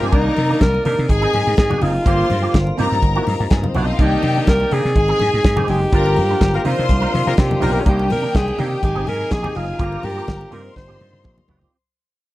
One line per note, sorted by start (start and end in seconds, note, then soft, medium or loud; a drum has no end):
0.00 0.09 G2 medium
0.00 2.04 C3 medium
0.00 0.11 F3 medium
0.00 1.07 A#3 medium
0.00 0.12 C4 medium
0.00 0.12 D#4 medium
0.00 0.13 F4 medium
0.00 0.14 G4 medium
0.00 0.12 G#4 medium
0.00 0.12 G#5 loud
0.12 0.28 C2 loud
0.12 0.34 D#3 medium
0.12 1.07 D#3 medium
0.12 0.35 A#3 medium
0.12 0.35 D4 loud
0.12 0.63 D#4 loud
0.12 0.84 A#4 loud
0.12 1.08 D5 medium
0.12 0.84 A#5 loud
0.12 kick loud
0.12 closed hi-hat medium
0.12 muted conga soft
0.37 0.53 C3 loud
0.37 open hi-hat medium
0.37 high conga medium
0.49 0.64 D#3 medium
0.49 0.63 A#3 medium
0.49 0.63 D4 medium
0.61 0.77 C2 medium
0.61 0.85 A#4 loud
0.61 kick loud
0.61 snare medium
0.61 closed hi-hat medium
0.61 muted conga soft
0.61 high conga medium
0.73 muted clean electric guitar stroke soft
0.73 muted conga soft
0.85 0.94 C3 loud
0.85 1.04 D#3 loud
0.85 0.98 A#3 loud
0.85 0.97 D4 loud
0.85 1.03 A#4 loud
0.85 open hi-hat medium
0.85 low conga medium
0.98 1.06 C3 loud
0.98 muted clean electric guitar stroke soft
1.03 1.11 A#4 medium
1.08 1.25 G#1 loud
1.08 2.05 D#3 medium
1.08 2.05 G#3 medium
1.08 2.05 D#4 medium
1.08 1.80 G#4 loud
1.08 1.58 G#4 loud
1.08 1.80 G#5 loud
1.08 muted clean electric guitar stroke soft
1.08 kick medium
1.08 closed hi-hat medium
1.08 muted conga soft
1.21 1.32 C4 medium
1.21 1.32 D#4 medium
1.21 1.34 G#4 medium
1.21 muted conga soft
1.33 1.42 G#2 medium
1.33 muted clean electric guitar stroke soft
1.33 open hi-hat medium
1.33 high conga medium
1.46 1.54 G#2 loud
1.46 muted clean electric guitar stroke medium
1.57 1.73 G#2 loud
1.57 1.84 G#4 loud
1.57 muted clean electric guitar stroke soft
1.57 kick loud
1.57 snare loud
1.57 closed hi-hat medium
1.57 muted conga soft
1.70 1.79 C4 medium
1.70 1.80 D#4 medium
1.70 1.82 G4 medium
1.70 muted conga soft
1.70 high conga medium
1.70 low conga medium
1.81 1.98 F#1 loud
1.81 1.96 C4 medium
1.81 1.94 D#4 medium
1.81 2.79 F4 loud
1.81 1.94 G#4 medium
1.81 open hi-hat medium
1.81 high conga medium
1.81 low conga medium
1.94 muted clean electric guitar stroke soft
2.04 2.22 G1 loud
2.04 2.77 D3 medium
2.04 2.77 F3 medium
2.04 4.92 A#3 medium
2.04 2.28 A#3 medium
2.04 2.77 F4 medium
2.04 2.29 F4 loud
2.04 2.29 G4 loud
2.04 2.53 C5 medium
2.04 2.53 C6 loud
2.04 kick loud
2.04 closed hi-hat medium
2.30 2.46 G2 loud
2.30 muted clean electric guitar stroke soft
2.30 open hi-hat medium
2.30 high conga medium
2.42 2.57 A#3 soft
2.42 2.57 F4 medium
2.42 2.56 G4 medium
2.54 2.70 G1 loud
2.54 kick loud
2.54 snare loud
2.54 closed hi-hat medium
2.54 muted conga soft
2.54 high conga medium
2.67 muted clean electric guitar stroke medium
2.67 muted conga soft
2.77 2.87 G2 loud
2.77 5.89 C3 medium
2.77 3.98 F3 medium
2.77 2.97 C4 loud
2.77 3.98 D#4 medium
2.77 2.92 F4 loud
2.77 2.90 G4 loud
2.77 3.45 A#4 loud
2.77 3.45 A#5 loud
2.77 open hi-hat medium
2.77 low conga medium
2.91 2.99 G2 loud
2.91 muted clean electric guitar stroke soft
2.91 snare soft
3.02 3.18 G1 loud
3.02 muted clean electric guitar stroke soft
3.02 kick loud
3.02 closed hi-hat medium
3.16 3.26 C4 medium
3.16 3.26 F4 medium
3.16 3.27 G4 medium
3.16 muted conga soft
3.27 3.35 G2 loud
3.27 muted clean electric guitar stroke soft
3.27 open hi-hat medium
3.27 high conga medium
3.39 3.47 G2 loud
3.39 muted clean electric guitar stroke medium
3.50 3.66 G2 medium
3.50 3.59 G#3 medium
3.50 3.59 G#4 medium
3.50 muted clean electric guitar stroke medium
3.50 kick loud
3.50 snare loud
3.50 closed hi-hat medium
3.50 muted conga soft
3.59 3.67 A#3 medium
3.59 3.67 A#4 medium
3.63 muted clean electric guitar stroke medium
3.63 muted conga soft
3.63 high conga medium
3.63 low conga medium
3.67 3.75 C4 medium
3.67 3.75 C5 medium
3.74 3.91 B1 medium
3.74 3.95 C4 medium
3.74 3.83 D4 medium
3.74 3.88 F4 loud
3.74 3.86 G4 loud
3.74 3.84 D5 medium
3.74 open hi-hat medium
3.74 high conga medium
3.74 low conga medium
3.84 3.92 D#4 medium
3.84 3.92 D#5 loud
3.84 muted clean electric guitar stroke soft
3.91 3.99 F4 loud
3.91 3.99 F5 medium
3.98 4.15 C2 loud
3.98 4.21 D#3 medium
3.98 5.91 D#3 medium
3.98 4.22 A#3 medium
3.98 4.22 D4 medium
3.98 4.50 D#4 loud
3.98 4.71 G4 loud
3.98 4.95 D5 medium
3.98 4.71 G5 loud
3.98 kick loud
3.98 closed hi-hat medium
3.98 muted conga soft
4.23 4.39 C3 loud
4.23 muted clean electric guitar stroke soft
4.23 open hi-hat medium
4.23 high conga medium
4.36 4.51 D#3 medium
4.36 4.50 A#3 medium
4.36 4.50 D4 medium
4.47 4.63 C2 loud
4.47 4.75 A#4 loud
4.47 kick loud
4.47 snare loud
4.47 closed hi-hat medium
4.47 muted conga soft
4.47 high conga medium
4.60 muted clean electric guitar stroke medium
4.60 muted conga soft
4.71 4.80 C3 loud
4.71 4.90 D#3 loud
4.71 4.85 A#3 loud
4.71 4.83 D4 loud
4.71 5.71 G#4 loud
4.71 open hi-hat medium
4.71 low conga medium
4.85 4.92 C3 loud
4.85 muted clean electric guitar stroke soft
4.85 snare soft
4.95 5.11 G#1 loud
4.95 5.92 G#3 medium
4.95 5.92 D#4 medium
4.95 5.67 G#4 loud
4.95 5.67 G#5 loud
4.95 muted clean electric guitar stroke medium
4.95 kick loud
4.95 closed hi-hat medium
5.08 5.19 G#3 medium
5.08 5.19 C4 medium
5.08 5.21 G#4 medium
5.08 muted conga soft
5.20 5.29 G#2 loud
5.20 muted clean electric guitar stroke soft
5.20 open hi-hat medium
5.20 high conga medium
5.32 5.41 G#2 loud
5.32 muted clean electric guitar stroke soft
5.43 5.60 G#2 loud
5.43 muted clean electric guitar stroke medium
5.43 kick loud
5.43 snare loud
5.43 closed hi-hat medium
5.43 muted conga soft
5.56 5.67 G#3 medium
5.56 5.68 C4 medium
5.56 5.69 G4 medium
5.56 muted conga soft
5.56 high conga medium
5.56 low conga medium
5.68 5.84 F#1 loud
5.68 5.83 G#3 medium
5.68 5.82 C4 medium
5.68 6.67 G4 loud
5.68 5.81 G#4 medium
5.68 open hi-hat medium
5.68 high conga medium
5.68 low conga medium
5.81 muted clean electric guitar stroke soft
5.92 6.19 G1 loud
5.92 6.64 D3 medium
5.92 6.65 F3 medium
5.92 7.84 A#3 medium
5.92 6.15 D4 loud
5.92 6.64 F4 medium
5.92 6.15 F4 loud
5.92 6.40 A#4 medium
5.92 6.16 A#4 loud
5.92 6.40 A#5 loud
5.92 kick loud
5.92 closed hi-hat medium
5.92 muted conga soft
6.06 muted conga soft
6.16 6.33 G2 loud
6.16 muted clean electric guitar stroke medium
6.16 open hi-hat medium
6.16 high conga medium
6.29 6.44 D4 soft
6.29 6.44 F4 medium
6.29 6.43 A#4 medium
6.41 6.57 G1 loud
6.41 kick loud
6.41 snare loud
6.41 closed hi-hat medium
6.41 muted conga soft
6.41 high conga medium
6.53 6.61 A#3 medium
6.53 6.61 F4 medium
6.53 6.61 G4 medium
6.53 6.61 A#4 loud
6.53 muted clean electric guitar stroke soft
6.53 muted conga soft
6.64 7.85 C3 medium
6.64 6.74 C3 loud
6.64 7.85 D#3 medium
6.64 7.85 F3 medium
6.64 7.85 D4 loud
6.64 6.83 D#4 medium
6.64 6.78 F4 medium
6.64 7.38 F4 medium
6.64 6.77 A#4 medium
6.64 7.60 C5 loud
6.64 7.60 C6 loud
6.64 open hi-hat medium
6.64 low conga medium
6.78 6.86 C3 loud
6.78 muted clean electric guitar stroke medium
6.89 7.05 C2 loud
6.89 muted clean electric guitar stroke soft
6.89 kick medium
6.89 closed hi-hat medium
6.89 high conga medium
7.01 7.12 D#4 medium
7.01 7.13 F4 medium
7.01 7.13 A#4 medium
7.01 muted conga soft
7.13 7.22 C3 loud
7.13 muted clean electric guitar stroke soft
7.13 open hi-hat medium
7.13 high conga medium
7.26 7.34 C3 loud
7.26 7.34 A#3 loud
7.26 7.34 F4 medium
7.26 7.34 G4 medium
7.26 7.34 A#4 loud
7.26 muted clean electric guitar stroke soft
7.37 7.53 C3 loud
7.37 7.83 G4 loud
7.37 muted clean electric guitar stroke soft
7.37 kick loud
7.37 snare loud
7.37 closed hi-hat medium
7.37 muted conga soft
7.50 muted clean electric guitar stroke medium
7.50 muted conga soft
7.50 high conga medium
7.50 low conga medium
7.60 7.78 B1 loud
7.60 7.82 A#3 loud
7.60 7.74 D#4 medium
7.60 7.73 F4 loud
7.60 7.82 F4 loud
7.60 7.82 G4 loud
7.60 7.82 A#4 loud
7.60 7.72 A#4 loud
7.60 open hi-hat medium
7.60 high conga medium
7.60 low conga medium
7.73 7.85 D#4 medium
7.73 7.86 F4 medium
7.73 7.88 A#4 medium
7.85 8.12 C2 loud
7.85 9.77 C3 medium
7.85 8.08 D#3 medium
7.85 9.78 D#3 medium
7.85 8.08 A#3 loud
7.85 8.82 A#3 medium
7.85 8.82 D4 medium
7.85 8.09 D4 medium
7.85 8.81 G4 medium
7.85 8.10 G4 medium
7.85 8.81 G5 loud
7.85 kick loud
7.85 closed hi-hat medium
7.85 muted conga soft
7.99 muted conga soft
8.09 8.26 C3 loud
8.09 8.38 A#4 medium
8.09 muted clean electric guitar stroke medium
8.09 open hi-hat medium
8.09 high conga medium
8.22 8.37 D#3 soft
8.22 8.37 A#3 medium
8.22 8.36 D4 medium
8.35 8.50 C2 medium
8.35 8.62 G#4 loud
8.35 kick loud
8.35 snare loud
8.35 closed hi-hat medium
8.35 muted conga soft
8.35 high conga medium
8.46 muted clean electric guitar stroke soft
8.46 muted conga soft
8.57 8.75 C3 loud
8.57 8.77 D#3 medium
8.57 8.71 A#3 loud
8.57 8.70 D4 medium
8.57 8.83 G4 loud
8.57 open hi-hat medium
8.57 low conga medium
8.71 muted clean electric guitar stroke soft
8.82 8.91 G#1 loud
8.82 9.79 G#3 medium
8.82 9.79 D#4 medium
8.82 9.10 G4 loud
8.82 9.78 G#4 medium
8.82 9.78 G#5 loud
8.82 muted clean electric guitar stroke soft
8.82 kick medium
8.82 closed hi-hat soft
8.82 muted conga soft
8.82 high conga medium
8.95 9.03 G#1 medium
8.95 9.05 C4 medium
8.95 9.05 D#4 medium
8.95 9.07 G#4 medium
8.95 muted conga soft
9.06 9.23 G#2 loud
9.06 9.34 A#4 loud
9.06 muted clean electric guitar stroke medium
9.06 open hi-hat medium
9.06 high conga medium
9.19 muted clean electric guitar stroke medium
9.30 9.47 A#1 medium
9.30 9.58 G#4 loud
9.30 muted clean electric guitar stroke soft
9.30 kick loud
9.30 snare loud
9.30 closed hi-hat medium
9.43 9.53 C4 medium
9.43 9.54 D#4 medium
9.43 9.56 G4 medium
9.43 muted conga soft
9.43 high conga medium
9.43 low conga medium
9.54 9.71 F#1 medium
9.54 9.70 C4 medium
9.54 9.67 D#4 medium
9.54 10.06 F4 loud
9.54 9.67 G#4 medium
9.54 open hi-hat medium
9.54 high conga medium
9.67 muted clean electric guitar stroke medium
9.78 9.95 G1 loud
9.78 10.51 D3 medium
9.78 11.71 F3 medium
9.78 10.01 A#3 medium
9.78 11.71 A#3 medium
9.78 10.02 F4 loud
9.78 10.51 F4 medium
9.78 10.02 G4 loud
9.78 10.51 A#4 medium
9.78 10.51 A#5 medium
9.78 kick loud
9.78 closed hi-hat medium
9.92 muted conga soft
10.02 10.19 G2 loud
10.02 10.54 G4 loud
10.02 muted clean electric guitar stroke soft
10.02 open hi-hat medium
10.02 high conga medium
10.16 10.31 A#3 soft
10.16 10.30 F4 soft
10.16 10.30 G4 medium
10.28 10.44 G1 loud
10.28 kick loud
10.28 snare medium
10.28 closed hi-hat medium
10.28 muted conga soft
10.28 high conga medium
10.40 muted clean electric guitar stroke medium
10.40 muted conga soft
10.51 10.68 G2 loud
10.51 11.72 C3 medium
10.51 11.72 G3 medium
10.51 10.70 C4 medium
10.51 11.72 D#4 medium
10.51 10.64 F4 medium
10.51 10.62 G4 medium
10.51 10.76 A#4 loud
10.51 11.71 C5 medium
10.51 11.71 C6 loud
10.51 open hi-hat medium
10.51 low conga medium
10.64 muted clean electric guitar stroke soft
10.75 10.85 G1 loud
10.75 11.45 C5 loud
10.75 muted clean electric guitar stroke soft
10.75 kick medium
10.75 snare medium
10.75 high conga medium
10.88 10.96 G1 medium
10.88 10.98 C4 medium
10.88 10.99 F4 medium
10.88 11.00 G4 medium
10.99 11.27 G2 medium
10.99 muted clean electric guitar stroke soft
10.99 high tom medium
10.99 high conga medium
11.13 muted clean electric guitar stroke soft
11.13 high tom medium
11.24 11.40 A#1 medium
11.24 muted clean electric guitar stroke soft
11.24 kick loud
11.24 mid tom medium
11.24 muted conga soft
11.38 muted clean electric guitar stroke soft
11.38 muted conga soft
11.38 high conga medium
11.38 low conga medium
11.48 11.64 F#1 medium
11.48 11.61 C4 medium
11.48 11.60 F4 medium
11.48 11.59 G4 medium
11.48 floor tom loud
11.48 high conga medium
11.61 11.76 C4 medium
11.61 11.75 F4 medium
11.61 11.75 G4 medium
11.61 floor tom loud